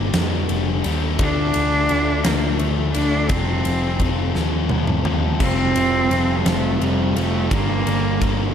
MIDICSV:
0, 0, Header, 1, 6, 480
1, 0, Start_track
1, 0, Tempo, 702576
1, 820, Time_signature, 6, 3, 24, 8
1, 5837, End_track
2, 0, Start_track
2, 0, Title_t, "Distorted electric guitar"
2, 0, Program_c, 0, 30
2, 0, Note_on_c, 0, 55, 72
2, 0, Note_on_c, 0, 58, 83
2, 0, Note_on_c, 0, 62, 77
2, 0, Note_on_c, 0, 67, 87
2, 93, Note_off_c, 0, 67, 0
2, 101, Note_off_c, 0, 62, 0
2, 101, Note_on_c, 0, 67, 76
2, 109, Note_on_c, 0, 62, 67
2, 110, Note_off_c, 0, 58, 0
2, 118, Note_on_c, 0, 58, 68
2, 337, Note_off_c, 0, 55, 0
2, 343, Note_off_c, 0, 58, 0
2, 345, Note_on_c, 0, 55, 77
2, 349, Note_off_c, 0, 62, 0
2, 351, Note_on_c, 0, 58, 74
2, 352, Note_off_c, 0, 67, 0
2, 357, Note_on_c, 0, 62, 77
2, 361, Note_on_c, 0, 67, 78
2, 576, Note_off_c, 0, 67, 0
2, 580, Note_off_c, 0, 62, 0
2, 584, Note_on_c, 0, 67, 82
2, 586, Note_off_c, 0, 58, 0
2, 589, Note_on_c, 0, 62, 62
2, 594, Note_on_c, 0, 58, 60
2, 808, Note_off_c, 0, 55, 0
2, 808, Note_off_c, 0, 67, 0
2, 810, Note_off_c, 0, 62, 0
2, 812, Note_off_c, 0, 58, 0
2, 826, Note_on_c, 0, 50, 87
2, 828, Note_on_c, 0, 57, 90
2, 833, Note_on_c, 0, 62, 99
2, 836, Note_on_c, 0, 65, 105
2, 1063, Note_off_c, 0, 62, 0
2, 1063, Note_off_c, 0, 65, 0
2, 1066, Note_on_c, 0, 65, 81
2, 1070, Note_off_c, 0, 57, 0
2, 1071, Note_on_c, 0, 62, 67
2, 1079, Note_on_c, 0, 57, 66
2, 1299, Note_off_c, 0, 50, 0
2, 1303, Note_off_c, 0, 57, 0
2, 1307, Note_off_c, 0, 62, 0
2, 1308, Note_on_c, 0, 50, 75
2, 1311, Note_on_c, 0, 57, 76
2, 1315, Note_on_c, 0, 62, 78
2, 1318, Note_off_c, 0, 65, 0
2, 1321, Note_on_c, 0, 65, 87
2, 1541, Note_off_c, 0, 65, 0
2, 1542, Note_off_c, 0, 62, 0
2, 1544, Note_on_c, 0, 65, 74
2, 1547, Note_off_c, 0, 57, 0
2, 1550, Note_on_c, 0, 62, 69
2, 1555, Note_on_c, 0, 57, 61
2, 1784, Note_off_c, 0, 50, 0
2, 1790, Note_off_c, 0, 57, 0
2, 1794, Note_off_c, 0, 62, 0
2, 1795, Note_on_c, 0, 50, 73
2, 1798, Note_on_c, 0, 57, 72
2, 1803, Note_off_c, 0, 65, 0
2, 1803, Note_on_c, 0, 62, 78
2, 1805, Note_on_c, 0, 65, 83
2, 2030, Note_off_c, 0, 65, 0
2, 2032, Note_off_c, 0, 62, 0
2, 2033, Note_on_c, 0, 65, 69
2, 2036, Note_off_c, 0, 57, 0
2, 2040, Note_on_c, 0, 62, 60
2, 2044, Note_on_c, 0, 57, 63
2, 2253, Note_off_c, 0, 50, 0
2, 2256, Note_off_c, 0, 62, 0
2, 2258, Note_off_c, 0, 57, 0
2, 2269, Note_on_c, 0, 53, 94
2, 2274, Note_on_c, 0, 55, 98
2, 2277, Note_on_c, 0, 60, 90
2, 2281, Note_off_c, 0, 65, 0
2, 2283, Note_on_c, 0, 65, 95
2, 2507, Note_off_c, 0, 65, 0
2, 2510, Note_on_c, 0, 65, 74
2, 2514, Note_off_c, 0, 60, 0
2, 2516, Note_on_c, 0, 60, 73
2, 2519, Note_off_c, 0, 55, 0
2, 2522, Note_on_c, 0, 55, 61
2, 2751, Note_off_c, 0, 55, 0
2, 2752, Note_off_c, 0, 53, 0
2, 2754, Note_on_c, 0, 53, 69
2, 2754, Note_on_c, 0, 55, 74
2, 2757, Note_off_c, 0, 60, 0
2, 2759, Note_on_c, 0, 60, 74
2, 2761, Note_off_c, 0, 65, 0
2, 2763, Note_on_c, 0, 65, 88
2, 2977, Note_off_c, 0, 65, 0
2, 2986, Note_on_c, 0, 65, 74
2, 2988, Note_off_c, 0, 60, 0
2, 2996, Note_on_c, 0, 60, 67
2, 2997, Note_off_c, 0, 55, 0
2, 3000, Note_on_c, 0, 55, 58
2, 3210, Note_off_c, 0, 53, 0
2, 3219, Note_on_c, 0, 53, 68
2, 3220, Note_off_c, 0, 60, 0
2, 3221, Note_off_c, 0, 55, 0
2, 3221, Note_off_c, 0, 65, 0
2, 3224, Note_on_c, 0, 55, 75
2, 3228, Note_on_c, 0, 60, 72
2, 3230, Note_on_c, 0, 65, 77
2, 3439, Note_off_c, 0, 65, 0
2, 3447, Note_off_c, 0, 60, 0
2, 3447, Note_on_c, 0, 65, 72
2, 3456, Note_on_c, 0, 60, 62
2, 3458, Note_off_c, 0, 55, 0
2, 3461, Note_on_c, 0, 55, 58
2, 3678, Note_off_c, 0, 53, 0
2, 3679, Note_off_c, 0, 65, 0
2, 3683, Note_off_c, 0, 60, 0
2, 3686, Note_on_c, 0, 53, 94
2, 3687, Note_off_c, 0, 55, 0
2, 3690, Note_on_c, 0, 55, 99
2, 3691, Note_on_c, 0, 60, 98
2, 3696, Note_on_c, 0, 65, 88
2, 3922, Note_off_c, 0, 65, 0
2, 3927, Note_off_c, 0, 60, 0
2, 3930, Note_on_c, 0, 65, 80
2, 3935, Note_on_c, 0, 60, 69
2, 3943, Note_off_c, 0, 55, 0
2, 3946, Note_on_c, 0, 55, 68
2, 4164, Note_off_c, 0, 53, 0
2, 4169, Note_off_c, 0, 60, 0
2, 4172, Note_on_c, 0, 53, 73
2, 4173, Note_off_c, 0, 55, 0
2, 4173, Note_off_c, 0, 65, 0
2, 4176, Note_on_c, 0, 55, 70
2, 4178, Note_on_c, 0, 60, 81
2, 4181, Note_on_c, 0, 65, 89
2, 4394, Note_off_c, 0, 65, 0
2, 4401, Note_off_c, 0, 60, 0
2, 4402, Note_on_c, 0, 65, 73
2, 4409, Note_off_c, 0, 55, 0
2, 4409, Note_on_c, 0, 60, 72
2, 4417, Note_on_c, 0, 55, 59
2, 4636, Note_off_c, 0, 53, 0
2, 4641, Note_off_c, 0, 55, 0
2, 4644, Note_on_c, 0, 53, 68
2, 4646, Note_off_c, 0, 65, 0
2, 4647, Note_off_c, 0, 60, 0
2, 4650, Note_on_c, 0, 55, 71
2, 4655, Note_on_c, 0, 60, 79
2, 4655, Note_on_c, 0, 65, 88
2, 4882, Note_off_c, 0, 65, 0
2, 4887, Note_off_c, 0, 60, 0
2, 4890, Note_on_c, 0, 65, 68
2, 4891, Note_off_c, 0, 55, 0
2, 4895, Note_on_c, 0, 60, 62
2, 4899, Note_on_c, 0, 55, 55
2, 5117, Note_off_c, 0, 53, 0
2, 5120, Note_off_c, 0, 65, 0
2, 5123, Note_off_c, 0, 60, 0
2, 5125, Note_off_c, 0, 55, 0
2, 5129, Note_on_c, 0, 43, 96
2, 5133, Note_on_c, 0, 50, 94
2, 5133, Note_on_c, 0, 55, 97
2, 5141, Note_on_c, 0, 58, 103
2, 5141, Note_on_c, 0, 62, 100
2, 5367, Note_off_c, 0, 62, 0
2, 5369, Note_on_c, 0, 62, 82
2, 5370, Note_off_c, 0, 58, 0
2, 5376, Note_off_c, 0, 55, 0
2, 5379, Note_on_c, 0, 58, 72
2, 5384, Note_on_c, 0, 55, 65
2, 5601, Note_off_c, 0, 50, 0
2, 5610, Note_on_c, 0, 50, 75
2, 5611, Note_off_c, 0, 55, 0
2, 5612, Note_off_c, 0, 58, 0
2, 5614, Note_off_c, 0, 43, 0
2, 5619, Note_on_c, 0, 55, 83
2, 5620, Note_on_c, 0, 58, 89
2, 5621, Note_off_c, 0, 62, 0
2, 5624, Note_on_c, 0, 62, 83
2, 5837, Note_off_c, 0, 50, 0
2, 5837, Note_off_c, 0, 55, 0
2, 5837, Note_off_c, 0, 58, 0
2, 5837, Note_off_c, 0, 62, 0
2, 5837, End_track
3, 0, Start_track
3, 0, Title_t, "Cello"
3, 0, Program_c, 1, 42
3, 0, Note_on_c, 1, 58, 102
3, 78, Note_off_c, 1, 58, 0
3, 835, Note_on_c, 1, 62, 125
3, 1538, Note_on_c, 1, 58, 96
3, 1548, Note_off_c, 1, 62, 0
3, 1766, Note_on_c, 1, 57, 85
3, 1776, Note_off_c, 1, 58, 0
3, 1999, Note_off_c, 1, 57, 0
3, 2003, Note_on_c, 1, 62, 105
3, 2249, Note_on_c, 1, 60, 97
3, 2259, Note_off_c, 1, 62, 0
3, 2974, Note_off_c, 1, 60, 0
3, 3707, Note_on_c, 1, 60, 123
3, 4364, Note_on_c, 1, 55, 69
3, 4375, Note_off_c, 1, 60, 0
3, 4423, Note_on_c, 1, 57, 97
3, 4433, Note_off_c, 1, 55, 0
3, 4671, Note_on_c, 1, 55, 86
3, 4681, Note_off_c, 1, 57, 0
3, 4911, Note_on_c, 1, 57, 99
3, 4921, Note_off_c, 1, 55, 0
3, 5145, Note_off_c, 1, 57, 0
3, 5153, Note_on_c, 1, 58, 97
3, 5837, Note_off_c, 1, 58, 0
3, 5837, End_track
4, 0, Start_track
4, 0, Title_t, "Distorted electric guitar"
4, 0, Program_c, 2, 30
4, 0, Note_on_c, 2, 43, 92
4, 0, Note_on_c, 2, 50, 104
4, 0, Note_on_c, 2, 55, 103
4, 557, Note_off_c, 2, 43, 0
4, 562, Note_off_c, 2, 50, 0
4, 569, Note_off_c, 2, 55, 0
4, 580, Note_on_c, 2, 55, 91
4, 596, Note_on_c, 2, 50, 81
4, 603, Note_on_c, 2, 43, 68
4, 805, Note_off_c, 2, 55, 0
4, 810, Note_off_c, 2, 50, 0
4, 817, Note_off_c, 2, 43, 0
4, 818, Note_on_c, 2, 50, 101
4, 832, Note_on_c, 2, 57, 93
4, 842, Note_on_c, 2, 62, 98
4, 2005, Note_off_c, 2, 50, 0
4, 2005, Note_off_c, 2, 62, 0
4, 2012, Note_off_c, 2, 57, 0
4, 2013, Note_on_c, 2, 62, 88
4, 2025, Note_on_c, 2, 57, 76
4, 2038, Note_on_c, 2, 50, 76
4, 2242, Note_off_c, 2, 62, 0
4, 2248, Note_off_c, 2, 57, 0
4, 2253, Note_on_c, 2, 41, 97
4, 2255, Note_off_c, 2, 50, 0
4, 2265, Note_on_c, 2, 48, 104
4, 2276, Note_on_c, 2, 53, 105
4, 3442, Note_off_c, 2, 41, 0
4, 3445, Note_off_c, 2, 53, 0
4, 3448, Note_off_c, 2, 48, 0
4, 3453, Note_on_c, 2, 53, 91
4, 3468, Note_on_c, 2, 48, 82
4, 3478, Note_on_c, 2, 41, 76
4, 3681, Note_off_c, 2, 41, 0
4, 3682, Note_off_c, 2, 53, 0
4, 3689, Note_off_c, 2, 48, 0
4, 3690, Note_on_c, 2, 41, 99
4, 3706, Note_on_c, 2, 48, 94
4, 3711, Note_on_c, 2, 53, 107
4, 4877, Note_off_c, 2, 53, 0
4, 4880, Note_off_c, 2, 41, 0
4, 4885, Note_on_c, 2, 53, 90
4, 4888, Note_off_c, 2, 48, 0
4, 4903, Note_on_c, 2, 48, 84
4, 4911, Note_on_c, 2, 41, 66
4, 5118, Note_off_c, 2, 53, 0
4, 5119, Note_off_c, 2, 41, 0
4, 5122, Note_on_c, 2, 43, 99
4, 5127, Note_off_c, 2, 48, 0
4, 5138, Note_on_c, 2, 50, 100
4, 5146, Note_on_c, 2, 55, 110
4, 5837, Note_off_c, 2, 43, 0
4, 5837, Note_off_c, 2, 50, 0
4, 5837, Note_off_c, 2, 55, 0
4, 5837, End_track
5, 0, Start_track
5, 0, Title_t, "Picked electric bass"
5, 0, Program_c, 3, 34
5, 0, Note_on_c, 3, 31, 85
5, 72, Note_off_c, 3, 31, 0
5, 99, Note_on_c, 3, 41, 89
5, 315, Note_off_c, 3, 41, 0
5, 341, Note_on_c, 3, 29, 91
5, 556, Note_off_c, 3, 29, 0
5, 581, Note_on_c, 3, 39, 91
5, 796, Note_off_c, 3, 39, 0
5, 813, Note_on_c, 3, 38, 91
5, 1032, Note_off_c, 3, 38, 0
5, 1065, Note_on_c, 3, 38, 95
5, 1278, Note_off_c, 3, 38, 0
5, 1304, Note_on_c, 3, 38, 84
5, 1518, Note_off_c, 3, 38, 0
5, 1546, Note_on_c, 3, 38, 88
5, 1759, Note_off_c, 3, 38, 0
5, 1778, Note_on_c, 3, 38, 86
5, 1995, Note_off_c, 3, 38, 0
5, 2021, Note_on_c, 3, 38, 90
5, 2236, Note_off_c, 3, 38, 0
5, 2253, Note_on_c, 3, 29, 96
5, 2472, Note_off_c, 3, 29, 0
5, 2501, Note_on_c, 3, 29, 89
5, 2716, Note_off_c, 3, 29, 0
5, 2734, Note_on_c, 3, 29, 86
5, 2952, Note_off_c, 3, 29, 0
5, 2984, Note_on_c, 3, 39, 87
5, 3198, Note_off_c, 3, 39, 0
5, 3221, Note_on_c, 3, 39, 89
5, 3436, Note_off_c, 3, 39, 0
5, 3455, Note_on_c, 3, 39, 87
5, 3673, Note_off_c, 3, 39, 0
5, 3688, Note_on_c, 3, 29, 87
5, 3909, Note_off_c, 3, 29, 0
5, 3934, Note_on_c, 3, 29, 88
5, 4152, Note_off_c, 3, 29, 0
5, 4176, Note_on_c, 3, 29, 87
5, 4393, Note_off_c, 3, 29, 0
5, 4410, Note_on_c, 3, 29, 89
5, 4630, Note_off_c, 3, 29, 0
5, 4653, Note_on_c, 3, 29, 91
5, 4871, Note_off_c, 3, 29, 0
5, 4895, Note_on_c, 3, 29, 88
5, 5112, Note_off_c, 3, 29, 0
5, 5133, Note_on_c, 3, 31, 96
5, 5352, Note_off_c, 3, 31, 0
5, 5376, Note_on_c, 3, 31, 89
5, 5593, Note_off_c, 3, 31, 0
5, 5610, Note_on_c, 3, 31, 86
5, 5830, Note_off_c, 3, 31, 0
5, 5837, End_track
6, 0, Start_track
6, 0, Title_t, "Drums"
6, 92, Note_on_c, 9, 51, 83
6, 94, Note_on_c, 9, 38, 103
6, 161, Note_off_c, 9, 51, 0
6, 163, Note_off_c, 9, 38, 0
6, 335, Note_on_c, 9, 51, 74
6, 403, Note_off_c, 9, 51, 0
6, 575, Note_on_c, 9, 51, 75
6, 643, Note_off_c, 9, 51, 0
6, 812, Note_on_c, 9, 51, 91
6, 815, Note_on_c, 9, 36, 113
6, 881, Note_off_c, 9, 51, 0
6, 883, Note_off_c, 9, 36, 0
6, 1051, Note_on_c, 9, 51, 75
6, 1119, Note_off_c, 9, 51, 0
6, 1291, Note_on_c, 9, 51, 75
6, 1360, Note_off_c, 9, 51, 0
6, 1533, Note_on_c, 9, 51, 96
6, 1535, Note_on_c, 9, 38, 101
6, 1601, Note_off_c, 9, 51, 0
6, 1603, Note_off_c, 9, 38, 0
6, 1772, Note_on_c, 9, 51, 78
6, 1840, Note_off_c, 9, 51, 0
6, 2012, Note_on_c, 9, 51, 80
6, 2080, Note_off_c, 9, 51, 0
6, 2249, Note_on_c, 9, 51, 98
6, 2253, Note_on_c, 9, 36, 110
6, 2317, Note_off_c, 9, 51, 0
6, 2321, Note_off_c, 9, 36, 0
6, 2494, Note_on_c, 9, 51, 81
6, 2562, Note_off_c, 9, 51, 0
6, 2729, Note_on_c, 9, 51, 83
6, 2731, Note_on_c, 9, 36, 80
6, 2798, Note_off_c, 9, 51, 0
6, 2799, Note_off_c, 9, 36, 0
6, 2973, Note_on_c, 9, 38, 60
6, 3041, Note_off_c, 9, 38, 0
6, 3207, Note_on_c, 9, 48, 85
6, 3276, Note_off_c, 9, 48, 0
6, 3330, Note_on_c, 9, 47, 81
6, 3399, Note_off_c, 9, 47, 0
6, 3451, Note_on_c, 9, 45, 100
6, 3519, Note_off_c, 9, 45, 0
6, 3691, Note_on_c, 9, 36, 105
6, 3692, Note_on_c, 9, 49, 92
6, 3759, Note_off_c, 9, 36, 0
6, 3760, Note_off_c, 9, 49, 0
6, 3932, Note_on_c, 9, 51, 79
6, 4001, Note_off_c, 9, 51, 0
6, 4174, Note_on_c, 9, 51, 76
6, 4243, Note_off_c, 9, 51, 0
6, 4413, Note_on_c, 9, 51, 91
6, 4415, Note_on_c, 9, 38, 104
6, 4481, Note_off_c, 9, 51, 0
6, 4483, Note_off_c, 9, 38, 0
6, 4656, Note_on_c, 9, 51, 77
6, 4724, Note_off_c, 9, 51, 0
6, 4895, Note_on_c, 9, 51, 73
6, 4963, Note_off_c, 9, 51, 0
6, 5132, Note_on_c, 9, 36, 107
6, 5133, Note_on_c, 9, 51, 90
6, 5201, Note_off_c, 9, 36, 0
6, 5202, Note_off_c, 9, 51, 0
6, 5375, Note_on_c, 9, 51, 71
6, 5443, Note_off_c, 9, 51, 0
6, 5612, Note_on_c, 9, 51, 77
6, 5613, Note_on_c, 9, 36, 88
6, 5680, Note_off_c, 9, 51, 0
6, 5681, Note_off_c, 9, 36, 0
6, 5837, End_track
0, 0, End_of_file